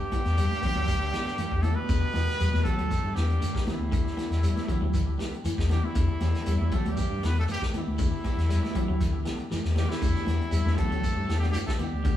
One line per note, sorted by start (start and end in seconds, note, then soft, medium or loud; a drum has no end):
0.00 1.63 G2 loud
0.00 1.64 G3 loud
0.00 0.11 D4 medium
0.00 0.12 G4 medium
0.00 1.64 G4 loud
0.12 0.27 E3 medium
0.12 0.28 B3 medium
0.12 0.28 D4 medium
0.12 0.28 G4 medium
0.12 muted fingered electric bass stroke soft
0.12 kick medium
0.12 closed hi-hat medium
0.12 high conga loud
0.12 shekere soft
0.25 0.46 E2 medium
0.25 snare soft
0.25 closed hi-hat soft
0.37 0.52 G3 medium
0.37 closed hi-hat medium
0.37 high conga soft
0.37 shekere medium
0.50 0.61 D4 medium
0.50 0.62 G4 medium
0.50 closed hi-hat soft
0.50 high conga medium
0.61 0.70 F#3 medium
0.61 0.78 B3 medium
0.61 0.78 D4 medium
0.61 0.79 G4 medium
0.61 kick medium
0.61 closed hi-hat medium
0.61 low conga medium
0.61 shekere soft
0.75 1.13 D2 medium
0.75 0.90 F#3 medium
0.75 high conga medium
0.87 kick medium
0.87 closed hi-hat medium
0.87 high conga soft
0.87 shekere medium
0.99 1.11 D4 medium
0.99 1.12 G4 medium
1.12 1.24 B1 medium
1.12 1.27 E3 medium
1.12 1.29 B3 medium
1.12 1.29 D4 medium
1.12 muted clean electric guitar stroke medium
1.12 snare medium
1.12 closed hi-hat medium
1.12 shekere soft
1.27 snare soft
1.27 closed hi-hat soft
1.38 1.49 E3 medium
1.38 1.53 E3 medium
1.38 closed hi-hat medium
1.38 high conga medium
1.38 shekere loud
1.51 1.72 E2 medium
1.51 1.62 D4 soft
1.51 1.62 G4 medium
1.51 kick medium
1.62 1.76 A2 medium
1.62 1.78 E3 medium
1.62 1.78 A3 medium
1.62 1.79 B3 medium
1.62 1.79 D4 medium
1.62 1.80 G4 medium
1.62 1.77 A4 medium
1.62 closed hi-hat soft
1.62 high conga loud
1.62 low conga medium
1.62 shekere soft
1.75 2.65 B2 medium
1.75 2.64 B3 loud
1.75 2.66 B4 loud
1.75 high conga medium
1.88 2.00 E2 loud
1.88 2.04 D3 medium
1.88 kick loud
1.88 closed hi-hat medium
1.88 high conga soft
1.88 shekere loud
2.01 2.13 D4 medium
2.01 2.13 G4 medium
2.13 2.25 E2 loud
2.13 2.29 E3 medium
2.13 2.30 B3 medium
2.13 2.30 D4 medium
2.13 2.30 G4 medium
2.13 snare soft
2.13 closed hi-hat medium
2.13 high conga medium
2.13 shekere soft
2.28 snare soft
2.28 closed hi-hat soft
2.39 2.51 E2 medium
2.39 2.54 G3 medium
2.39 closed hi-hat medium
2.39 high conga soft
2.39 shekere medium
2.52 2.63 E2 medium
2.52 2.63 D4 soft
2.52 2.64 G4 medium
2.52 snare soft
2.52 high conga medium
2.62 3.15 A2 medium
2.62 2.73 F#3 medium
2.62 3.16 A3 medium
2.62 2.80 B3 medium
2.62 2.81 D4 medium
2.62 2.81 G4 medium
2.62 3.17 A4 loud
2.62 kick medium
2.62 closed hi-hat medium
2.62 low conga medium
2.66 shekere soft
2.78 2.88 D2 medium
2.78 2.93 F#3 medium
2.78 closed hi-hat soft
2.78 high conga medium
2.91 kick medium
2.91 closed hi-hat medium
2.91 high conga soft
2.91 low conga medium
2.91 shekere medium
3.03 3.14 G2 medium
3.03 3.14 D4 soft
3.03 3.15 G4 medium
3.13 3.37 E2 medium
3.13 3.65 G2 medium
3.13 3.31 E3 medium
3.13 3.65 G3 medium
3.13 3.31 B3 medium
3.13 3.31 D4 medium
3.13 3.64 G4 medium
3.13 3.32 G4 medium
3.13 snare medium
3.13 closed hi-hat soft
3.13 shekere soft
3.30 closed hi-hat soft
3.41 3.55 D3 medium
3.41 closed hi-hat medium
3.41 high conga medium
3.41 shekere medium
3.54 3.66 D4 soft
3.54 3.66 G4 medium
3.54 kick medium
3.54 snare medium
3.54 closed hi-hat soft
3.65 5.39 E2 medium
3.65 5.38 E3 medium
3.65 3.81 E3 medium
3.65 3.82 B3 medium
3.65 3.83 D4 medium
3.65 5.38 E4 medium
3.65 3.83 G4 medium
3.65 muted fingered electric bass stroke soft
3.65 snare soft
3.65 closed hi-hat soft
3.65 high conga loud
3.65 low conga medium
3.65 shekere soft
3.79 4.00 D2 medium
3.92 4.06 D3 medium
3.92 kick loud
3.92 closed hi-hat medium
3.92 high conga soft
3.92 shekere loud
4.04 4.16 D4 soft
4.04 4.17 G4 medium
4.04 snare soft
4.16 4.32 E3 medium
4.16 4.33 B3 medium
4.16 4.33 D4 medium
4.16 4.33 G4 medium
4.16 muted fingered electric bass stroke soft
4.16 snare soft
4.16 closed hi-hat medium
4.16 high conga medium
4.16 shekere soft
4.30 4.51 E2 medium
4.30 snare soft
4.30 closed hi-hat soft
4.43 4.58 G3 medium
4.43 closed hi-hat medium
4.43 high conga soft
4.43 shekere medium
4.56 4.67 D4 soft
4.56 4.68 G4 medium
4.56 snare soft
4.56 closed hi-hat soft
4.56 high conga medium
4.68 4.76 F#3 medium
4.68 4.84 B3 medium
4.68 4.84 D4 medium
4.68 4.84 G4 medium
4.68 kick medium
4.68 closed hi-hat medium
4.68 low conga loud
4.68 shekere soft
4.81 5.19 D2 medium
4.81 4.97 F#3 medium
4.81 high conga medium
4.94 kick medium
4.94 closed hi-hat medium
4.94 high conga soft
4.94 low conga medium
4.94 shekere loud
5.06 5.17 D4 soft
5.06 5.18 G4 medium
5.17 5.30 B1 medium
5.17 5.34 E3 medium
5.17 5.34 B3 medium
5.17 5.35 D4 medium
5.17 5.35 G4 medium
5.17 snare medium
5.17 closed hi-hat medium
5.17 shekere soft
5.34 closed hi-hat soft
5.44 5.55 E3 loud
5.44 5.60 E3 medium
5.44 closed hi-hat medium
5.44 high conga medium
5.44 shekere loud
5.56 5.79 E2 medium
5.56 5.69 D4 soft
5.56 5.69 G4 medium
5.56 kick medium
5.56 snare medium
5.69 5.87 G2 medium
5.69 5.85 E3 medium
5.69 5.88 G3 medium
5.69 5.85 B3 medium
5.69 5.86 D4 medium
5.69 5.86 G4 medium
5.69 snare soft
5.69 closed hi-hat soft
5.69 high conga loud
5.69 low conga medium
5.69 shekere soft
5.83 6.77 E2 medium
5.83 6.76 E4 medium
5.83 high conga medium
5.87 6.78 E3 medium
5.95 6.06 E2 loud
5.95 6.10 D3 medium
5.95 kick loud
5.95 closed hi-hat medium
5.95 high conga soft
5.95 shekere medium
6.08 6.20 D4 soft
6.08 6.20 G4 medium
6.20 6.32 E2 medium
6.20 6.36 E3 medium
6.20 6.36 B3 medium
6.20 6.37 D4 medium
6.20 6.37 G4 medium
6.20 snare soft
6.20 closed hi-hat medium
6.20 high conga loud
6.20 shekere soft
6.34 snare soft
6.34 closed hi-hat soft
6.46 6.57 E2 medium
6.46 6.61 G3 medium
6.46 closed hi-hat medium
6.46 high conga soft
6.46 shekere medium
6.60 6.69 E2 medium
6.60 6.72 D4 soft
6.60 6.72 G4 medium
6.60 high conga medium
6.71 6.87 A2 medium
6.71 6.80 F#3 medium
6.71 6.88 B3 medium
6.71 6.88 G4 medium
6.71 6.86 A4 medium
6.71 kick medium
6.71 closed hi-hat medium
6.71 low conga medium
6.71 shekere soft
6.76 6.87 A3 medium
6.85 6.95 D2 medium
6.85 7.00 F#3 medium
6.85 7.27 G4 medium
6.85 closed hi-hat soft
6.85 high conga medium
6.89 7.27 G2 medium
6.89 7.29 G3 medium
6.97 kick medium
6.97 closed hi-hat medium
6.97 high conga soft
6.97 low conga medium
6.97 shekere medium
7.10 7.20 G2 medium
7.10 7.21 D4 soft
7.10 7.22 G4 medium
7.22 7.44 E2 medium
7.22 7.37 B2 loud
7.22 7.38 E3 medium
7.22 7.38 B3 medium
7.22 7.38 D4 medium
7.22 7.38 G4 medium
7.22 7.37 B4 loud
7.22 snare medium
7.22 closed hi-hat medium
7.22 shekere soft
7.27 7.38 B3 loud
7.37 7.43 A2 medium
7.37 7.45 A3 medium
7.37 7.44 A4 loud
7.37 closed hi-hat soft
7.48 7.61 G2 medium
7.48 7.62 G4 loud
7.48 muted clean electric guitar stroke medium
7.48 closed hi-hat medium
7.48 high conga medium
7.48 shekere loud
7.53 7.63 G3 medium
7.60 7.72 G4 medium
7.60 kick medium
7.60 snare medium
7.60 closed hi-hat soft
7.72 9.48 E2 medium
7.72 7.89 E3 medium
7.72 7.89 B3 medium
7.72 7.89 D4 medium
7.72 7.89 G4 medium
7.72 muted fingered electric bass stroke soft
7.72 closed hi-hat soft
7.72 high conga medium
7.72 low conga medium
7.72 shekere soft
7.77 9.50 E3 medium
7.77 9.49 E4 medium
7.87 8.08 D2 medium
7.87 high conga medium
7.98 8.13 D3 medium
7.98 kick loud
7.98 closed hi-hat medium
7.98 high conga soft
7.98 shekere loud
8.11 8.23 D4 medium
8.11 8.23 G4 medium
8.23 8.39 E3 medium
8.23 8.39 B3 medium
8.23 8.40 D4 medium
8.23 8.40 G4 medium
8.23 muted fingered electric bass stroke soft
8.23 kick medium
8.23 closed hi-hat soft
8.23 high conga medium
8.23 shekere soft
8.37 8.58 E2 medium
8.37 snare soft
8.37 closed hi-hat soft
8.49 8.64 G3 medium
8.49 snare soft
8.49 closed hi-hat medium
8.49 high conga soft
8.49 shekere medium
8.62 8.73 D4 medium
8.62 8.75 G4 medium
8.62 snare soft
8.62 closed hi-hat soft
8.62 high conga medium
8.74 8.83 F#3 medium
8.74 8.90 B3 medium
8.74 8.91 D4 medium
8.74 8.91 G4 medium
8.74 kick medium
8.74 closed hi-hat medium
8.74 low conga medium
8.74 shekere soft
8.88 9.26 D2 medium
8.88 9.03 F#3 medium
9.00 kick medium
9.00 snare soft
9.00 closed hi-hat medium
9.00 high conga soft
9.00 low conga medium
9.00 shekere medium
9.13 9.24 D4 medium
9.13 9.24 G4 medium
9.24 9.37 B1 medium
9.24 9.40 E3 medium
9.24 9.41 B3 medium
9.24 9.41 D4 medium
9.24 9.41 G4 medium
9.24 snare medium
9.24 closed hi-hat medium
9.24 shekere soft
9.38 closed hi-hat soft
9.51 9.62 E3 loud
9.51 9.66 E3 medium
9.51 snare medium
9.51 high conga medium
9.51 shekere medium
9.64 9.85 E2 medium
9.64 9.76 G4 medium
9.64 snare medium
9.76 9.91 G2 medium
9.76 9.91 E3 medium
9.76 9.92 G3 medium
9.76 9.92 B3 medium
9.76 9.92 D4 medium
9.76 9.91 G4 loud
9.76 9.93 G4 medium
9.76 snare medium
9.76 high conga medium
9.76 low conga medium
9.76 shekere soft
9.89 10.77 E2 medium
9.89 10.78 E3 medium
9.89 10.78 E4 loud
9.89 snare medium
9.89 high conga medium
10.01 10.13 E2 loud
10.01 10.16 D3 medium
10.01 10.28 A3 medium
10.01 10.28 D4 medium
10.01 10.29 G4 medium
10.01 kick loud
10.01 closed hi-hat medium
10.01 high conga soft
10.01 shekere loud
10.15 10.27 D4 soft
10.15 10.27 G4 medium
10.15 snare soft
10.26 10.38 E2 loud
10.26 10.41 E3 medium
10.26 10.43 B3 medium
10.26 10.44 D4 medium
10.26 10.44 G4 medium
10.26 snare soft
10.26 closed hi-hat medium
10.26 high conga medium
10.26 shekere soft
10.41 closed hi-hat soft
10.51 10.63 E2 medium
10.51 10.66 G3 medium
10.51 closed hi-hat medium
10.51 high conga soft
10.51 shekere medium
10.65 10.75 E2 medium
10.65 10.97 A3 medium
10.65 10.97 D4 medium
10.65 10.77 G4 medium
10.65 10.98 A4 loud
10.65 muted clean electric guitar stroke soft
10.65 snare soft
10.65 high conga medium
10.76 11.39 A2 medium
10.76 10.85 F#3 medium
10.76 11.40 A3 loud
10.76 10.93 B3 medium
10.76 10.94 D4 medium
10.76 10.94 G4 medium
10.76 11.39 A4 loud
10.76 kick medium
10.76 closed hi-hat medium
10.76 low conga medium
10.76 shekere soft
10.91 11.01 D2 loud
10.91 11.06 F#3 medium
10.91 closed hi-hat soft
11.04 kick medium
11.04 closed hi-hat medium
11.04 high conga soft
11.04 low conga medium
11.04 shekere loud
11.16 11.27 G2 medium
11.16 11.28 D4 soft
11.16 11.28 G4 medium
11.28 11.50 E2 medium
11.28 11.43 E3 medium
11.28 11.45 B3 medium
11.28 11.45 D4 medium
11.28 11.45 G4 medium
11.28 snare medium
11.28 closed hi-hat soft
11.28 shekere soft
11.40 11.46 G2 medium
11.40 11.47 G3 medium
11.40 11.69 A3 medium
11.40 11.69 D4 medium
11.40 11.69 F#4 medium
11.40 11.46 G4 medium
11.40 snare soft
11.40 closed hi-hat soft
11.51 11.58 G2 medium
11.51 11.68 E3 medium
11.51 11.59 G3 medium
11.51 11.58 G4 loud
11.51 closed hi-hat medium
11.51 high conga medium
11.51 shekere loud
11.65 11.71 A2 medium
11.65 11.72 A3 medium
11.65 11.79 D4 soft
11.65 11.79 G4 soft
11.65 11.72 A4 medium
11.65 kick medium
11.65 snare medium
11.65 closed hi-hat soft
11.77 12.17 G2 loud
11.77 11.94 E3 medium
11.77 12.17 G3 loud
11.77 11.95 B3 medium
11.77 11.96 D4 medium
11.77 12.17 G4 loud
11.77 11.96 G4 medium
11.77 muted fingered electric bass stroke soft
11.77 closed hi-hat soft
11.77 high conga loud
11.77 low conga medium
11.81 shekere soft
11.92 12.14 D2 medium
12.04 12.17 D3 medium
12.04 12.17 A3 medium
12.04 12.17 D4 medium
12.04 12.17 F#4 medium
12.04 kick loud
12.04 closed hi-hat medium
12.04 high conga soft
12.04 shekere loud